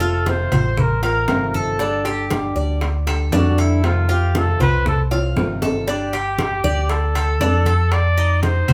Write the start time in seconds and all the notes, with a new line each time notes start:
Already playing: F1 A4
0.00 A3 C4 F4, high bongo, high conga
0.26 C3 D#3 A3 C4 F4 C5, high bongo, high conga, high timbale, low timbale
0.52 A1 A3 C4 F4 C5, high conga, low conga, high timbale
0.77 A#4, muted nylon-string guitar stroke, high bongo, high conga, low conga
1.02 A3 C4 F4 A#4 F5, high bongo, high conga, high timbale
1.28 C3 D#3 A3 C4 F4, high bongo, low bongo, high conga, high timbale, low timbale
1.54 A4, high bongo, high conga
1.79 D3 G3 D4 G4, high bongo, high conga
2.05 G3 D4 G4, high conga, high timbale
2.30 D3 G3 D4 G4, high bongo, high conga, high timbale, low timbale
2.56 D2 G3 D4 G4 D5
2.81 muted nylon-string guitar stroke, high bongo, high conga, high timbale
3.07 G3 D4 G4 A4, high conga, high timbale
3.32 F2 D3 G3 D4 F#4 G4, high bongo, low bongo, high conga, low timbale
3.58 E4 A4, high timbale
3.83 C3 D#3 A3 C4 F4, high bongo, high conga, high timbale
4.09 A3 C4 F4 G4, high bongo, high conga
4.34 C3 D#3 A3 C4 F4 A4, high bongo, high conga, high timbale, low timbale
4.60 C2 A3 C4 F4 B4 C5, high conga, low conga, high timbale
4.86 A4, muted nylon-string guitar stroke, high bongo, high conga, low conga
5.11 A3 C4 F4 F5, high bongo, high conga, high timbale
5.36 G1 C3 D#3 A3 C4 F4, high bongo, low bongo, high conga, low timbale
5.62 A4, high bongo, high conga, low timbale
5.88 D4 G4, high bongo, high conga
6.13 G4, high conga, high timbale
6.39 high bongo, high conga, high timbale
6.64 D2 D5, high conga
6.90 A4, high bongo, high conga, high timbale
7.15 A4, high conga, high timbale
7.40 F2 D4, high bongo, low bongo, high conga, low timbale
7.66 A4, high conga, high timbale
7.92 D5, high bongo, high conga, high timbale
8.18 D#4, high bongo, high conga
8.43 C5, high bongo, high conga, high timbale
8.68 C2 C5, high conga, low conga, high timbale